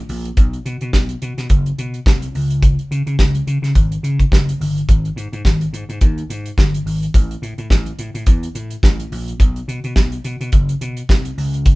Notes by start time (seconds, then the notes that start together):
0.09 A#1, open hi-hat
0.25 closed hi-hat
0.37 B1, kick, closed hi-hat
0.53 closed hi-hat
0.65 B2, closed hi-hat
0.81 B2, closed hi-hat
0.93 B1, kick, snare
1.09 closed hi-hat
1.22 B2, closed hi-hat
1.38 B2, snare, closed hi-hat
1.49 F#1, kick, closed hi-hat
1.66 closed hi-hat
1.78 B2, closed hi-hat
1.94 closed hi-hat
2.06 C2, kick, snare
2.22 closed hi-hat
2.35 C#2, open hi-hat
2.50 closed hi-hat
2.62 kick, closed hi-hat
2.79 closed hi-hat
2.91 C#3, closed hi-hat
3.07 C#3, closed hi-hat
3.19 C#2, kick, snare
3.35 closed hi-hat
3.47 C#3, closed hi-hat
3.62 C#3, snare, closed hi-hat
3.75 G#1, kick, closed hi-hat
3.92 closed hi-hat
4.03 C#3, closed hi-hat
4.20 kick, closed hi-hat
4.32 F#1, kick, snare
4.49 closed hi-hat
4.60 G1, open hi-hat
4.78 closed hi-hat
4.89 G#1, kick, closed hi-hat
5.05 closed hi-hat
5.16 G#2, closed hi-hat
5.33 G#2, closed hi-hat
5.45 G#1, kick, snare
5.61 closed hi-hat
5.73 G#2, closed hi-hat
5.89 G#2, closed hi-hat
6.01 D#2, kick, closed hi-hat
6.18 closed hi-hat
6.30 G#2, closed hi-hat
6.46 closed hi-hat
6.58 G1, kick, snare
6.74 closed hi-hat
6.86 G#1, open hi-hat
7.03 closed hi-hat
7.14 A1, kick, closed hi-hat
7.31 closed hi-hat
7.42 A2, closed hi-hat
7.58 A2, closed hi-hat
7.70 A1, kick, snare
7.86 closed hi-hat
7.99 A2, closed hi-hat
8.14 A2, closed hi-hat
8.26 E2, kick, closed hi-hat
8.43 closed hi-hat
8.55 A2, closed hi-hat
8.71 closed hi-hat
8.83 A1, kick, snare
9.00 closed hi-hat
9.12 A#1, open hi-hat
9.28 closed hi-hat
9.40 B1, kick, closed hi-hat
9.56 closed hi-hat
9.68 B2, closed hi-hat
9.84 B2, closed hi-hat
9.96 B1, kick, snare
10.12 closed hi-hat
10.24 B2, closed hi-hat
10.41 B2, closed hi-hat
10.52 F#1, kick, closed hi-hat
10.69 closed hi-hat
10.81 B2, closed hi-hat
10.97 closed hi-hat
11.09 C2, kick, snare
11.25 closed hi-hat
11.38 C#2, open hi-hat
11.54 closed hi-hat
11.65 kick, closed hi-hat